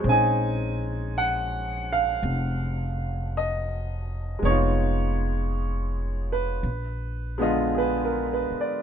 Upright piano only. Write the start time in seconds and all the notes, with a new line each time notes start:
0.00 G#3
0.04 C4 C#4
0.09 D#4 G#5
1.18 F#5
1.93 F5
3.37 D#5
4.39 G#3 B3
4.45 D#4 C#5
4.50 F4
6.32 B4
7.38 D3 G#3 B3
7.42 F4 D#5
7.75 G#4 B4
8.05 A#4
8.34 B4
8.61 D5